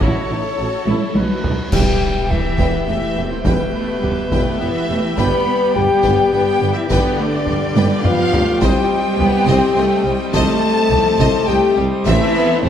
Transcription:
0.00 double bass section A1, tuba A1, french horn section A3 E4, viola section E4 A4, cello section F#4, trumpet C#5, violin section C#5 A5, taiko
0.29 tuba A1, double bass section A1, viola section D#4, cello section E4
0.57 tuba A1, double bass section A1, viola section E4, cello section F#4
0.85 tuba A1, double bass section A1, cello section E4, viola section E4, taiko high
1.14 double bass section B1, tuba B1, viola section C#4 F#4, cello section D#4, french horn section D#4, violin section B4, trumpet B4, taiko high
1.42 tuba B1, double bass section B1, viola section D#4, taiko low
1.71 tuba E1, double bass section E2, cello section G3, pipe organ B3 G4 E5 G5, french horn section G4, violin section B4 G5, flute G5, concert bass drum, taiko, crash
2.29 tuba E1, double bass section E2, cello section E3, viola section G3, french horn section E4, violin section G4 E5, flute E5, taiko low
2.58 tuba E1, double bass section E2, viola section B3, violin section B4 G5, taiko
2.87 tuba E1, double bass section E2, cello section E3, viola section A3, french horn section E4, violin section B4 E5 G5, flute E5
3.16 tuba E1, double bass section E2, violin section G4 E5
3.30 cello section C3, french horn section C4, violin section C5, flute C5
3.44 tuba E1, double bass section E2, cello section B2, viola section G3, french horn section B3, violin section B4 G5, flute B4, taiko
3.73 viola section A3
4.01 tuba E1, double bass section E2, viola section G3, violin section G4 E5, taiko low
4.31 tuba E1, double bass section E2, viola section A3, violin section B4 G5, taiko
4.59 tuba E1, double bass section E2, cello section E3, viola section B3, french horn section E4, violin section B4 E5 G5, flute E5
4.88 tuba E1, double bass section E2, viola section A3, violin section G4 E5
5.16 tuba G1, double bass section G2, viola section G3, pipe organ B3 G4 D5 G5, cello section B3, violin section B4 G5 B5, french horn section B4, flute B5, taiko
5.74 tuba G1, double bass section G2, cello section G3, viola section B3, violin section G4 D5 G5, french horn section G4, flute G5, taiko low
6.03 tuba G1, double bass section G2, violin section B4 G5, taiko
6.32 tuba G1, double bass section G2, cello section G3, french horn section G4, violin section B4 G5, flute G5
6.60 tuba G1, double bass section G2, violin section G4 D5
6.75 cello section E3, french horn section E4, violin section E5, flute E5
6.89 tuba G1, double bass section G2, cello section D3, viola section B3, french horn section D4, violin section B4 D5 G5, flute D5, taiko
7.19 viola section A3
7.46 tuba G1, double bass section G2, viola section G3, violin section G4 D5, taiko low
7.74 tuba G1, double bass section G2, violin section B4 G5, taiko high
8.03 tuba G1, double bass section G2, cello section F3, viola section B3, french horn section F4, violin section B4 F5 G5, flute F5, taiko low-mid
8.31 tuba G1, double bass section G2, viola section A3, violin section G4 D5, taiko low
8.60 double bass section C2, tuba C2, cello section G3, viola section G3, pipe organ C4 G4 C5 D#5, french horn section G4, violin section C5 D#5 G5, flute G5, taiko
9.18 double bass section C2, tuba C2, viola section B3, violin section G4 C5, taiko low
9.47 tuba C2, double bass section C2, viola section C4, violin section C5 D#5, taiko
9.75 tuba C2, double bass section C2, viola section A3, violin section C5 D#5
10.05 double bass section C2, tuba C2, viola section G3, violin section G4 C5
10.33 tuba C2, double bass section C2, cello section A3, french horn section A4, violin section C5 D#5 A5, flute A5, taiko
10.90 double bass section C2, tuba C2, viola section F3, violin section G4 C5, taiko low
11.19 double bass section C2, tuba C2, viola section G3, violin section C5 D#5, taiko
11.47 double bass section C2, tuba C2, cello section G3, viola section A3, french horn section G4, violin section C5 D#5 G5, flute G5
11.77 double bass section C2, tuba C2, viola section G3, violin section G4 C5
12.05 double bass section A1, tuba A1, cello section E3, viola section A3, french horn section E4, pipe organ A4 E5, violin section C5 E5, flute E5, taiko
12.35 viola section B3
12.62 double bass section A1, tuba A1, cello section C3, viola section A3, french horn section C4, violin section A4 C5, flute C5, taiko low

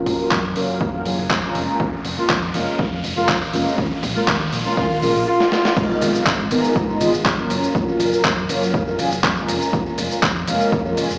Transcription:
Already playing: analog polysynth F#3 A#3 C#4 F4 A#4, riser
0.06 fingered electric bass F#1, kick, open hi-hat, shaker
0.19 analog polysynth F#3 A#3 C#4 F4 A#4, muted fingered electric bass stroke, shaker
0.31 fingered electric bass F#2, kick, clap
0.55 fingered electric bass F#1, analog polysynth F#3 A#3 C#4 F4 A#4, open hi-hat, shaker
0.69 shaker
0.81 fingered electric bass F#2, kick, shaker
0.94 analog polysynth F#3 A#3 C#4 F4 A#4
1.05 fingered electric bass F#1, analog polysynth F#3 A#3 C#4 F4 G#4, open hi-hat, shaker
1.19 fingered electric bass F#1, shaker
1.30 fingered electric bass F#2, kick, clap
1.43 analog polysynth G#3 A#3 C#4 F4 A#4
1.55 fingered electric bass F1, open hi-hat, shaker
1.68 shaker
1.80 fingered electric bass F2, kick, shaker
2.05 fingered electric bass F1, open hi-hat, shaker
2.17 analog polysynth G#3 A#3 C#4 F4 A#4, horn section F4, muted fingered electric bass stroke, shaker
2.29 fingered electric bass F2, kick, clap
2.54 fingered electric bass F1, analog polysynth G#3 A#3 C#4 F4 A#4, open hi-hat, shaker
2.68 shaker
2.79 fingered electric bass F2, kick, shaker
3.04 fingered electric bass F1, open hi-hat, shaker
3.17 fingered electric bass F1, analog polysynth G#3 A#3 C#4 F4 A#4, horn section F4, shaker
3.29 fingered electric bass F2, kick, clap
3.53 fingered electric bass F1, analog polysynth G#3 A#3 C#4 F4 A#4, open hi-hat, shaker
3.67 shaker
3.78 fingered electric bass D#2, kick, shaker
3.91 muted fingered electric bass stroke
4.03 fingered electric bass A#1, kick, open hi-hat, shaker
4.16 analog polysynth G#3 A#3 C#4 F4 A#4, horn section F4, muted fingered electric bass stroke, shaker
4.27 fingered electric bass D#2, kick, clap, shaker
4.53 fingered electric bass A#1, open hi-hat, shaker
4.65 analog polysynth G#3 A#3 C#4 F4 A#4, horn section F4, shaker
4.77 fingered electric bass D#2, analog polysynth G#3 A#3 C#4 F4 A#4, horn section F4, kick, shaker
5.02 fingered electric bass A#1, analog polysynth G#3 A#3 C#4 F4 A#4, horn section F4, open hi-hat, shaker
5.15 fingered electric bass A#1, shaker
5.27 horn section F4
5.40 snare
5.52 horn section F4, snare
5.65 snare
5.76 fingered electric bass G#2, analog polysynth G#3 B3 D#4 F4 A#4, kick, crash, impact, shaker
5.91 shaker
6.01 fingered electric bass G#1, open hi-hat, ride, shaker
6.14 analog polysynth G#3 B3 D#4 F4 A#4, muted fingered electric bass stroke, shaker
6.26 fingered electric bass G#2, kick, clap, shaker
6.39 shaker
6.51 fingered electric bass G#1, analog polysynth G#3 B3 D#4 F4 A#4, open hi-hat, ride, shaker
6.64 shaker
6.75 fingered electric bass G#2, kick, shaker
6.89 analog polysynth G#3 B3 D#4 F4 A#4, shaker
7.00 fingered electric bass G#1, analog polysynth G#3 B3 D#4 F4 G#4, open hi-hat, ride, shaker
7.14 fingered electric bass G#1, shaker
7.25 fingered electric bass G#2, kick, clap, shaker
7.38 analog polysynth F#3 A#3 C#4 F4 A#4, shaker
7.50 fingered electric bass F#1, open hi-hat, ride, shaker
7.63 shaker
7.75 fingered electric bass F#2, kick, shaker
7.88 muted fingered electric bass stroke, shaker
7.99 fingered electric bass F#1, open hi-hat, ride, shaker
8.12 analog polysynth F#3 A#3 C#4 F4 A#4, muted fingered electric bass stroke, shaker
8.24 fingered electric bass F#2, kick, clap, shaker
8.37 shaker
8.49 fingered electric bass F#1, analog polysynth F#3 A#3 C#4 F4 A#4, open hi-hat, ride, shaker
8.63 shaker
8.74 fingered electric bass F#2, kick, shaker
8.87 analog polysynth F#3 A#3 C#4 F4 A#4, shaker
8.98 fingered electric bass F#1, analog polysynth F#3 A#3 C#4 F4 G#4, open hi-hat, ride, shaker
9.11 fingered electric bass F#1, shaker
9.24 fingered electric bass F#2, kick, clap, shaker
9.36 analog polysynth G#3 A#3 C#4 F4 A#4, shaker
9.48 fingered electric bass F1, open hi-hat, ride, shaker
9.62 shaker
9.73 fingered electric bass F2, kick, shaker
9.86 shaker
9.98 fingered electric bass F1, open hi-hat, ride, shaker
10.11 analog polysynth G#3 A#3 C#4 F4 A#4, muted fingered electric bass stroke, shaker
10.23 fingered electric bass F2, kick, clap, shaker
10.36 shaker
10.47 fingered electric bass F1, analog polysynth G#3 A#3 C#4 F4 A#4, open hi-hat, ride, shaker
10.61 shaker
10.72 fingered electric bass F2, kick, shaker
10.85 analog polysynth G#3 A#3 C#4 F4 A#4, shaker
10.97 fingered electric bass F1, analog polysynth G#3 A#3 C#4 F4 G#4, open hi-hat, ride, shaker
11.10 fingered electric bass F1, shaker

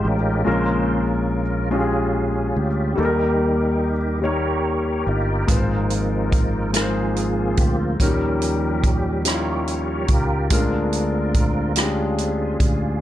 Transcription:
Already playing: grand piano G#3 D#4 F4 G4, tonewheel organ G#3 D#4 G4
0.05 fingered electric bass A1, tonewheel organ C#4 F4 A#4
0.45 fingered electric bass A#1, grand piano A#2 G#3 C#4 F4 A#4, tonewheel organ C#3 G#3 C5
1.71 grand piano G#3 C#4 F4 G4, tonewheel organ C#4 F4 G#4
1.80 grand piano G#4
2.56 fingered electric bass D2, tonewheel organ G4
2.95 fingered electric bass D#2, grand piano D#3 G3 A#3 D#4 A4, tonewheel organ D#3 G3 A#3 D#4 G4 A#4
3.05 grand piano A#4
4.22 grand piano G3 A#3 D#4 C#5, tonewheel organ G4 A#4 C#5
5.07 fingered electric bass G1, tonewheel organ D#4 F4 A#4
5.47 fingered electric bass G#1, grand piano G#2 G#3 D#4 F4 B4, tonewheel organ F3 A#3 C4, kick, closed hi-hat
5.57 grand piano C5
5.90 closed hi-hat
6.32 kick, closed hi-hat
6.73 grand piano G#3 D#4 F4 A#4, tonewheel organ C4, cross-stick, closed hi-hat
6.77 tonewheel organ F4 G#4
6.82 grand piano C5
7.16 closed hi-hat
7.57 fingered electric bass D2, tonewheel organ G4, kick, closed hi-hat
8.00 fingered electric bass D#2, grand piano D#3 F#3 C#4 D#4 A#4, tonewheel organ F3 G3 C#4 G4 A#4, kick, closed hi-hat
8.06 grand piano G3
8.42 closed hi-hat
8.83 kick, closed hi-hat
9.25 grand piano G3 C#4 D#4 E4, tonewheel organ G4 A#4 C#5, cross-stick, closed hi-hat
9.34 grand piano F4
9.67 tonewheel organ F3 G3 C#4, closed hi-hat
10.08 fingered electric bass C#2, tonewheel organ F4 A#4, kick, closed hi-hat
10.50 fingered electric bass D2, tonewheel organ D3 G#3 C4, grand piano D3 G#3 C#4 F4 A#4, kick, closed hi-hat
10.58 grand piano D4
10.93 closed hi-hat
11.34 kick, closed hi-hat
11.76 grand piano G#3 C#4 F4 G4, tonewheel organ F4 G#4, cross-stick, closed hi-hat
11.84 grand piano D4
12.18 tonewheel organ D3 G#3 C4, closed hi-hat
12.60 fingered electric bass D2, kick, closed hi-hat

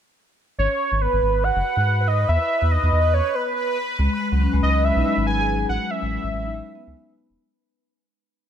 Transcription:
0.58 analog synth bass G#1, synth texture B4, soft synth lead C#5
0.92 analog synth bass G#1
1.01 soft synth lead B4
1.13 analog synth bass G#1
1.22 analog synth bass G#1
1.44 soft synth lead F#5
1.56 analog synth bass F#1
1.77 analog synth bass G#2
2.07 soft synth lead D#5
2.29 analog synth bass E2, soft synth lead E5
2.62 analog synth bass E2
2.71 soft synth lead D#5
2.83 analog synth bass E2
2.92 analog synth bass E2
3.14 soft synth lead C#5
3.35 soft synth lead B4
3.99 analog synth bass C#2, vibraphone G#3
4.20 vibraphone G#3
4.32 analog synth bass C#2, vibraphone F#3
4.42 vibraphone C#4
4.53 analog synth bass C#2, vibraphone G#3
4.63 analog synth bass C#2, soft synth lead D#5
4.75 vibraphone G#3
4.84 vibraphone G#3, soft synth lead E5
4.96 analog synth bass B1, vibraphone D#4
5.05 vibraphone G#3
5.17 analog synth bass G#1
5.27 vibraphone F#3, soft synth lead G#5
5.38 vibraphone G#4
5.48 vibraphone G#3
5.69 analog synth bass A1, vibraphone G#3, soft synth lead F#5
5.81 vibraphone F#3
5.90 vibraphone C#4, soft synth lead E5
6.02 analog synth bass A1, vibraphone G#3
6.23 analog synth bass A1, vibraphone G#3
6.33 analog synth bass A1, vibraphone G#3
6.45 vibraphone D#4
6.54 vibraphone G#3
6.75 vibraphone B3
6.87 analog synth bass C#2, vibraphone G#3
6.97 vibraphone D#4
7.18 vibraphone B3
7.30 analog synth bass E1, vibraphone G#3

